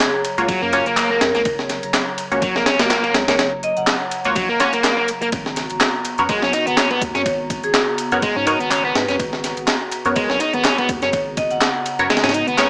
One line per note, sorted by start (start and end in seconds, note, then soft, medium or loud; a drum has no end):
0.00 5.29 C#3 medium
0.00 5.28 F#3 medium
0.00 0.35 A#3 medium
0.00 0.35 F4 medium
0.00 0.35 F#4 medium
0.00 0.09 G#4 medium
0.00 5.28 C#5 loud
0.00 12.70 A#5 medium
0.00 snare loud
0.00 clap loud
0.00 closed hi-hat soft
0.00 ride medium
0.24 closed hi-hat medium
0.24 ride medium
0.38 0.47 C#2 loud
0.38 0.47 A#3 medium
0.38 0.47 F4 medium
0.38 0.47 F#4 medium
0.38 0.48 C#5 loud
0.38 closed hi-hat soft
0.48 0.61 F#3 medium
0.48 kick loud
0.48 closed hi-hat soft
0.48 ride medium
0.62 0.82 F#2 loud
0.62 0.72 A#3 loud
0.73 0.85 A#3 medium
0.73 0.85 C#4 loud
0.73 0.85 F4 medium
0.73 0.85 F#4 medium
0.73 0.85 C#5 loud
0.73 closed hi-hat medium
0.73 ride medium
0.86 1.19 F#1 loud
0.86 0.96 A#3 medium
0.86 closed hi-hat soft
0.97 1.09 A#3 medium
0.97 clap loud
0.97 closed hi-hat soft
0.97 ride medium
1.11 1.20 A#3 medium
1.11 1.46 A#4 medium
1.21 1.32 F#2 medium
1.21 snare loud
1.21 closed hi-hat medium
1.21 ride medium
1.35 1.44 C#2 medium
1.35 1.41 A#3 medium
1.35 snare soft
1.35 closed hi-hat soft
1.45 1.79 F#1 loud
1.45 kick loud
1.45 closed hi-hat soft
1.45 ride medium
1.59 snare soft
1.69 snare soft
1.69 closed hi-hat medium
1.69 ride medium
1.83 1.92 F#1 medium
1.83 closed hi-hat soft
1.83 ride soft
1.94 snare loud
1.94 clap loud
1.94 closed hi-hat soft
1.94 ride medium
2.18 closed hi-hat medium
2.18 ride medium
2.31 2.40 C#2 loud
2.31 4.22 A#3 medium
2.31 4.22 C#4 medium
2.31 4.22 F#4 medium
2.31 4.22 C#5 medium
2.31 closed hi-hat soft
2.42 2.53 A#1 soft
2.42 2.54 F#3 medium
2.42 kick loud
2.42 closed hi-hat soft
2.42 ride medium
2.56 2.65 A#1 medium
2.56 2.65 A#3 loud
2.56 snare medium
2.66 2.78 C#4 loud
2.66 snare loud
2.66 closed hi-hat medium
2.66 ride medium
2.79 2.89 F#1 medium
2.79 2.90 A#3 medium
2.79 snare loud
2.79 closed hi-hat soft
2.79 ride medium
2.90 3.03 A#3 medium
2.90 snare loud
2.90 clap loud
2.90 closed hi-hat soft
2.90 ride medium
3.04 3.13 A#3 medium
3.04 ride soft
3.14 3.26 C#2 medium
3.14 snare loud
3.14 closed hi-hat medium
3.14 ride medium
3.28 3.37 C#2 medium
3.28 3.34 A#3 medium
3.28 3.44 C#5 medium
3.28 snare loud
3.28 closed hi-hat soft
3.28 ride medium
3.39 3.73 F#1 loud
3.39 snare loud
3.39 closed hi-hat soft
3.39 ride medium
3.63 3.74 D#5 loud
3.63 closed hi-hat medium
3.77 3.86 F#1 medium
3.77 4.25 F#5 medium
3.77 closed hi-hat soft
3.87 snare loud
3.87 clap loud
3.87 closed hi-hat soft
3.87 ride medium
4.11 closed hi-hat medium
4.11 ride medium
4.25 4.34 C#2 loud
4.25 4.35 A#3 medium
4.25 4.35 F4 medium
4.25 4.35 F#4 medium
4.25 4.35 C#5 loud
4.25 closed hi-hat soft
4.35 4.47 A#1 medium
4.35 4.48 F#3 medium
4.35 kick loud
4.35 closed hi-hat soft
4.35 ride medium
4.49 4.59 A#3 loud
4.60 4.72 A#3 loud
4.60 4.72 C#4 loud
4.60 4.72 F4 medium
4.60 4.72 F#4 medium
4.60 4.72 C#5 loud
4.60 snare soft
4.60 closed hi-hat medium
4.60 ride medium
4.73 4.83 A#3 medium
4.73 closed hi-hat soft
4.73 ride soft
4.84 4.96 A#3 medium
4.84 snare loud
4.84 clap loud
4.84 closed hi-hat soft
4.84 ride medium
4.98 5.07 A#3 medium
5.08 closed hi-hat medium
5.08 ride medium
5.22 5.28 A#3 medium
5.22 closed hi-hat soft
5.32 5.66 G#1 loud
5.32 12.70 C#3 medium
5.32 12.70 B3 medium
5.32 12.70 F#4 medium
5.32 kick loud
5.32 closed hi-hat soft
5.32 ride medium
5.46 snare soft
5.56 snare soft
5.56 closed hi-hat medium
5.56 ride medium
5.70 5.79 G#1 medium
5.70 closed hi-hat soft
5.70 ride soft
5.81 snare loud
5.81 clap loud
5.81 closed hi-hat soft
5.81 ride medium
6.05 closed hi-hat medium
6.05 ride medium
6.18 6.28 F#2 loud
6.18 8.09 B3 medium
6.18 8.09 F#4 medium
6.18 8.09 A#4 medium
6.18 8.09 C#5 medium
6.18 closed hi-hat soft
6.29 6.40 B1 soft
6.29 6.42 G#3 medium
6.29 kick loud
6.29 closed hi-hat soft
6.29 ride medium
6.42 6.52 B1 medium
6.42 6.52 C#4 loud
6.42 snare medium
6.53 6.66 D#4 loud
6.53 closed hi-hat medium
6.53 ride medium
6.67 6.76 G#1 medium
6.67 6.77 B3 medium
6.67 closed hi-hat soft
6.77 6.90 C#4 medium
6.77 snare loud
6.77 clap loud
6.77 closed hi-hat soft
6.77 ride medium
6.91 7.01 B3 medium
6.91 ride soft
7.01 7.13 D#2 medium
7.01 kick loud
7.01 closed hi-hat medium
7.01 ride medium
7.15 7.24 F#2 medium
7.15 7.21 C#4 medium
7.15 7.31 C#5 medium
7.15 snare soft
7.15 closed hi-hat soft
7.26 7.60 G#1 loud
7.26 kick loud
7.26 closed hi-hat soft
7.26 ride medium
7.50 kick loud
7.50 closed hi-hat medium
7.50 ride medium
7.63 7.73 G#1 medium
7.63 7.71 G#4 medium
7.63 closed hi-hat soft
7.74 7.83 G#4 medium
7.74 snare loud
7.74 clap loud
7.74 closed hi-hat soft
7.74 ride medium
7.98 closed hi-hat medium
7.98 ride medium
8.12 8.21 F#2 loud
8.12 8.22 B3 medium
8.12 8.22 F#4 medium
8.12 8.22 A#4 medium
8.12 8.22 C#5 loud
8.12 closed hi-hat soft
8.22 8.35 G#3 medium
8.22 kick loud
8.22 closed hi-hat soft
8.22 ride medium
8.36 8.56 G#2 loud
8.36 8.46 C#4 loud
8.47 8.59 B3 medium
8.47 8.59 D#4 loud
8.47 8.59 F#4 medium
8.47 8.59 A#4 medium
8.47 8.59 C#5 loud
8.47 closed hi-hat medium
8.47 ride medium
8.60 8.92 G#1 loud
8.60 8.70 B3 medium
8.60 closed hi-hat soft
8.71 8.83 C#4 medium
8.71 clap loud
8.71 closed hi-hat soft
8.71 ride medium
8.84 8.94 B3 medium
8.84 9.20 B4 medium
8.95 9.06 G#2 medium
8.95 snare loud
8.95 closed hi-hat medium
8.95 ride medium
9.08 9.18 F#2 medium
9.08 9.14 C#4 medium
9.08 snare soft
9.08 closed hi-hat soft
9.19 9.54 G#1 loud
9.19 kick loud
9.19 closed hi-hat soft
9.19 ride medium
9.33 snare soft
9.44 snare soft
9.44 closed hi-hat medium
9.44 ride medium
9.57 9.66 G#1 medium
9.57 closed hi-hat soft
9.57 ride soft
9.68 snare loud
9.68 clap loud
9.68 closed hi-hat soft
9.68 ride medium
9.92 closed hi-hat medium
9.92 ride medium
10.05 10.14 F#2 loud
10.05 11.96 B3 medium
10.05 11.96 F#4 medium
10.05 11.96 A#4 medium
10.05 11.96 C#5 medium
10.05 closed hi-hat soft
10.16 10.27 B1 soft
10.16 10.28 G#3 medium
10.16 kick loud
10.16 closed hi-hat soft
10.16 ride medium
10.30 10.39 B1 medium
10.30 10.39 C#4 loud
10.30 snare medium
10.40 10.53 D#4 loud
10.40 closed hi-hat medium
10.40 ride medium
10.53 10.63 G#1 medium
10.53 10.64 B3 medium
10.53 closed hi-hat soft
10.64 10.77 C#4 medium
10.64 snare loud
10.64 clap loud
10.64 closed hi-hat soft
10.64 ride medium
10.78 10.88 B3 medium
10.78 ride soft
10.89 11.00 D#2 medium
10.89 kick loud
10.89 closed hi-hat medium
10.89 ride medium
11.02 11.11 F#2 medium
11.02 11.08 C#4 medium
11.02 11.18 C#5 medium
11.02 snare soft
11.02 closed hi-hat soft
11.13 11.47 G#1 loud
11.13 kick loud
11.13 closed hi-hat soft
11.13 ride medium
11.37 11.48 D#5 loud
11.37 kick loud
11.37 closed hi-hat medium
11.37 ride medium
11.50 11.60 G#1 medium
11.50 11.99 F#5 medium
11.50 closed hi-hat soft
11.61 snare loud
11.61 clap loud
11.61 closed hi-hat soft
11.61 ride medium
11.86 closed hi-hat medium
11.86 ride medium
11.99 12.08 F#2 loud
11.99 12.09 B3 medium
11.99 12.09 F#4 medium
11.99 12.09 A#4 medium
11.99 12.09 C#5 loud
11.99 closed hi-hat soft
12.10 12.22 G#3 medium
12.10 snare medium
12.10 closed hi-hat soft
12.10 ride medium
12.17 snare medium
12.17 ride medium
12.23 12.43 G#2 loud
12.23 12.33 C#4 medium
12.23 snare medium
12.23 ride medium
12.29 snare medium
12.29 ride medium
12.34 12.46 D#4 loud
12.34 closed hi-hat medium
12.34 ride medium
12.48 12.58 G#1 loud
12.48 12.57 B3 medium
12.48 closed hi-hat soft
12.58 12.70 C#2 medium
12.58 12.70 B3 loud
12.58 12.70 C#4 medium
12.58 12.70 F#4 medium
12.58 12.70 A#4 medium
12.58 12.70 C#5 loud
12.58 snare loud
12.58 clap loud
12.58 closed hi-hat soft
12.58 ride medium